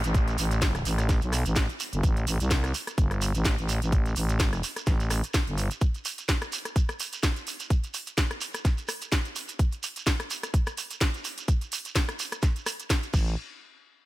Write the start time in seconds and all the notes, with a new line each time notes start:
Already playing: downlifter
0.04 A1, closed hi-hat, shekere
0.14 kick, closed hi-hat, shekere
0.28 closed hi-hat, shekere
0.38 A1, open hi-hat, shekere
0.51 closed hi-hat, shekere
0.62 kick, snare, closed hi-hat, shekere
0.75 cross-stick, closed hi-hat, shekere
0.85 A1, open hi-hat, shekere
0.98 cross-stick, closed hi-hat, shekere
1.09 kick, snare, closed hi-hat, shekere
1.21 B1, closed hi-hat, shekere
1.33 cross-stick, open hi-hat, shekere
1.46 A1, closed hi-hat, shekere
1.55 kick, snare, closed hi-hat, shekere
1.69 closed hi-hat, shekere
1.80 open hi-hat, shekere
1.92 G1, closed hi-hat, shekere
2.03 A1, kick, closed hi-hat, shekere
2.16 closed hi-hat, shekere
2.27 A1, open hi-hat, shekere
2.40 C2, closed hi-hat, shekere
2.51 kick, snare, closed hi-hat, shekere
2.64 cross-stick, closed hi-hat, shekere
2.74 open hi-hat, shekere
2.87 cross-stick, closed hi-hat, shekere
2.98 G1, kick, closed hi-hat, shekere
3.11 cross-stick, closed hi-hat, shekere
3.21 open hi-hat, shekere
3.35 A1, closed hi-hat, shekere
3.45 kick, snare, closed hi-hat, shekere
3.58 A1, closed hi-hat, shekere
3.68 open hi-hat, shekere
3.82 A1, closed hi-hat, shekere
3.92 kick, closed hi-hat, shekere
4.06 closed hi-hat, shekere
4.16 A1, open hi-hat, shekere
4.29 closed hi-hat, shekere
4.40 kick, snare, closed hi-hat, shekere
4.53 cross-stick, closed hi-hat, shekere
4.63 open hi-hat, shekere
4.76 cross-stick, closed hi-hat, shekere
4.86 A1, kick, snare, closed hi-hat, shekere
5.00 closed hi-hat, shekere
5.10 cross-stick, open hi-hat, shekere
5.24 closed hi-hat, shekere
5.34 kick, snare, closed hi-hat, shekere
5.47 G1, closed hi-hat, shekere
5.58 open hi-hat, shekere
5.71 closed hi-hat, shekere
5.81 kick, closed hi-hat, shekere
5.94 closed hi-hat, shekere
6.05 open hi-hat, shekere
6.18 closed hi-hat, shekere
6.28 kick, snare, closed hi-hat, shekere
6.42 cross-stick, closed hi-hat, shekere
6.52 open hi-hat, shekere
6.65 cross-stick, closed hi-hat, shekere
6.76 kick, closed hi-hat, shekere
6.89 cross-stick, closed hi-hat, shekere
7.00 open hi-hat, shekere
7.13 closed hi-hat, shekere
7.23 kick, snare, closed hi-hat
7.36 closed hi-hat, shekere
7.47 open hi-hat, shekere
7.60 closed hi-hat, shekere
7.70 kick, closed hi-hat, shekere
7.84 closed hi-hat, shekere
7.94 open hi-hat, shekere
8.07 closed hi-hat, shekere
8.18 kick, snare, closed hi-hat, shekere
8.30 cross-stick, closed hi-hat, shekere
8.41 open hi-hat, shekere
8.54 cross-stick, closed hi-hat, shekere
8.65 kick, snare, closed hi-hat, shekere
8.78 closed hi-hat, shekere
8.88 cross-stick, open hi-hat, shekere
9.02 closed hi-hat, shekere
9.12 kick, snare, closed hi-hat, shekere
9.25 closed hi-hat, shekere
9.35 open hi-hat, shekere
9.48 closed hi-hat, shekere
9.59 kick, closed hi-hat, shekere
9.72 closed hi-hat, shekere
9.83 open hi-hat, shekere
9.96 closed hi-hat, shekere
10.07 kick, snare, closed hi-hat, shekere
10.20 cross-stick, closed hi-hat, shekere
10.30 open hi-hat, shekere
10.43 cross-stick, closed hi-hat, shekere
10.54 kick, closed hi-hat, shekere
10.67 cross-stick, closed hi-hat, shekere
10.77 open hi-hat, shekere
10.90 closed hi-hat, shekere
11.01 kick, snare, closed hi-hat, shekere
11.14 closed hi-hat, shekere
11.24 open hi-hat, shekere
11.38 closed hi-hat, shekere
11.48 kick, closed hi-hat, shekere
11.61 closed hi-hat, shekere
11.72 open hi-hat, shekere
11.85 closed hi-hat, shekere
11.95 kick, snare, closed hi-hat, shekere
12.09 cross-stick, closed hi-hat, shekere
12.19 open hi-hat, shekere
12.32 cross-stick, closed hi-hat, shekere
12.42 kick, snare, closed hi-hat, shekere
12.56 closed hi-hat, shekere
12.66 cross-stick, open hi-hat, shekere
12.80 closed hi-hat, shekere
12.90 kick, snare, closed hi-hat, shekere
13.03 closed hi-hat, shekere
13.14 A1, kick, crash, shekere
13.27 shekere